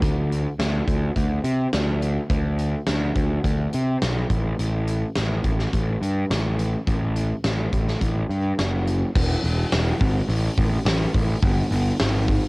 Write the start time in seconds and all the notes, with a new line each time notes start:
0.02 D2, kick, closed hi-hat
0.32 closed hi-hat
0.59 D2, snare, closed hi-hat
0.87 D2, kick, closed hi-hat
1.16 D2, kick, closed hi-hat
1.44 C3, closed hi-hat
1.73 D2, snare, closed hi-hat
2.02 closed hi-hat
2.29 D2, kick, closed hi-hat
2.58 closed hi-hat
2.86 D2, snare, closed hi-hat
3.15 D2, kick, closed hi-hat
3.44 D2, kick, closed hi-hat
3.73 C3, closed hi-hat
4.02 B1, snare, closed hi-hat
4.30 A1, kick, closed hi-hat
4.59 A1, closed hi-hat
4.87 closed hi-hat
5.15 A1, snare, closed hi-hat
5.44 A1, kick, closed hi-hat
5.59 snare
5.73 A1, kick, closed hi-hat
6.02 G2, closed hi-hat
6.30 A1, snare, closed hi-hat
6.59 closed hi-hat
6.87 A1, kick, closed hi-hat
7.16 closed hi-hat
7.44 A1, snare, closed hi-hat
7.72 A1, kick, closed hi-hat
7.88 snare
8.01 A1, kick, closed hi-hat
8.29 G2, closed hi-hat
8.59 F#1, snare, closed hi-hat
8.87 closed hi-hat
9.15 E1, kick, crash
9.44 E1, open hi-hat
9.72 E1, snare, open hi-hat
10.01 G#1, kick, open hi-hat
10.29 A1, open hi-hat
10.58 A1, kick, open hi-hat
10.85 A1, snare, open hi-hat
11.15 A1, kick, open hi-hat
11.42 G1, kick, open hi-hat
11.71 G1, open hi-hat
12.00 G#1, snare, open hi-hat
12.28 kick, open hi-hat